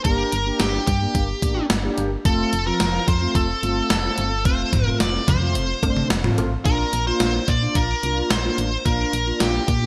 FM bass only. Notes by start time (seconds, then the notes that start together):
0.05 G1
0.33 G1
0.60 G1
0.88 G2
1.15 G1
1.42 A1
1.70 G1
1.98 G1
2.25 F1
2.53 F1
2.80 F1
3.08 F2
3.35 F1
3.63 G1
3.90 F1
4.18 G1
4.45 F1
4.73 F1
5.00 F1
5.28 F2
5.55 F1
5.83 G1
6.11 F1
6.38 A1
6.66 A#1
6.93 A#1
7.20 A#1
7.48 A#2
7.75 A#1
8.03 C2
8.31 A#1
8.58 A1
8.86 A#1
9.13 A#1
9.41 A#1
9.68 A#2